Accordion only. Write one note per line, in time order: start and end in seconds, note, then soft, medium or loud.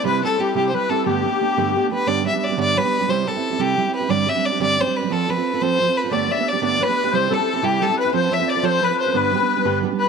0.06 0.24 B4 medium
0.24 0.39 A4 medium
0.40 0.54 G4 medium
0.56 0.73 G4 medium
0.74 0.90 B4 medium
0.89 1.06 A4 medium
1.05 1.87 G4 medium
6.11 6.40 D5 medium
6.42 6.46 E5 medium
6.47 6.61 D5 medium
6.62 6.79 D5 medium
6.80 6.94 B4 medium
6.96 7.13 B4 medium
7.11 7.29 C5 medium
7.30 7.63 A4 medium
7.62 7.82 G4 medium
7.81 7.96 A4 medium
7.97 8.14 B4 medium
8.12 8.21 C5 medium
8.31 8.46 E5 medium
8.48 8.64 D5 loud
8.63 8.82 C5 medium
8.82 8.91 B4 medium
8.93 9.01 B4 medium
9.02 9.13 B4 medium
9.14 9.79 B4 loud
9.99 10.09 B4 medium